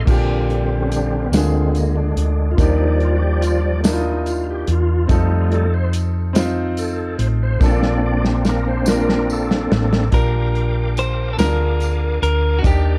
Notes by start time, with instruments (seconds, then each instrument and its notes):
0.05 fingered electric bass A#1, grand piano A#2 A#3 D4 F4, tonewheel organ D3 G3 C4, kick, crash, tambourine
0.10 grand piano G4
0.50 closed hi-hat
0.82 tonewheel organ C#4
0.90 tonewheel organ D4, closed hi-hat, tambourine
1.25 tonewheel organ B3
1.32 fingered electric bass D2, tonewheel organ D3 G#3 C4, grand piano D3 A#3 D4 F4, snare, closed hi-hat, tambourine
1.36 grand piano G#4
1.75 tonewheel organ A#3, closed hi-hat, tambourine
1.96 tonewheel organ D4
2.16 fingered electric bass D2, tonewheel organ D4, closed hi-hat
2.51 tonewheel organ F4
2.57 fingered electric bass D#2, grand piano D#3 A#3 D4 D#4 G4, tonewheel organ F3 G3 D5, kick, closed hi-hat, tambourine
2.62 tonewheel organ D#4
3.00 tonewheel organ F4, closed hi-hat
3.16 tonewheel organ F#4
3.22 tonewheel organ G4
3.42 tonewheel organ F4, closed hi-hat, tambourine
3.83 grand piano A#3 D4 D#4 E4, tonewheel organ D#4, snare, closed hi-hat, tambourine
3.93 grand piano F4
4.26 tonewheel organ F4, closed hi-hat, tambourine
4.50 tonewheel organ G4
4.67 fingered electric bass E2, tonewheel organ F4, closed hi-hat
5.07 fingered electric bass F2, tonewheel organ G3 A3, grand piano C4 D#4 F4, kick, closed hi-hat, tambourine
5.11 tonewheel organ D#4, grand piano A4
5.52 tonewheel organ A4, closed hi-hat
5.74 tonewheel organ C5
5.93 closed hi-hat, tambourine
6.33 grand piano C4 D#4 F4, snare, closed hi-hat, tambourine
6.37 grand piano C5
6.77 tonewheel organ A4, closed hi-hat, tambourine
7.18 fingered electric bass A1, tonewheel organ C5, closed hi-hat
7.43 tonewheel organ C5
7.60 fingered electric bass A#1, grand piano A#2 A#3 D4 F4 A4, tonewheel organ A#3 C4 D4, kick, snare, tambourine
7.65 tonewheel organ D5
7.83 snare
8.06 tonewheel organ D5
8.25 snare
8.45 snare, tambourine
8.49 tonewheel organ A#4
8.68 tonewheel organ C5
8.84 grand piano A#3 D4 F4, snare, tambourine
8.89 grand piano A#4, tonewheel organ A#4
9.09 snare
9.30 tonewheel organ A4, tambourine
9.51 snare
9.71 fingered electric bass A1, snare
9.93 snare
10.11 fingered electric bass A#1, grand piano A#2 D4 F4 G4 A#4, clean electric guitar A#4, tonewheel organ G5, kick, closed hi-hat, tambourine
10.15 tonewheel organ A#4 F5 D6
10.55 closed hi-hat
10.97 clean electric guitar C5, closed hi-hat, tambourine
11.33 grand piano C4, clean electric guitar A4
11.38 fingered electric bass D2, grand piano D3 F4 G#4 A#4, clean electric guitar A#4, tonewheel organ G#5, snare, closed hi-hat, tambourine
11.43 grand piano D4
11.80 closed hi-hat, tambourine
12.22 fingered electric bass D2, clean electric guitar A#4, closed hi-hat
12.59 grand piano D4, clean electric guitar F#4
12.63 fingered electric bass D#2, grand piano D#3 D#4 G4 A#4, tonewheel organ G4 D5 G5, clean electric guitar G4, kick, closed hi-hat, tambourine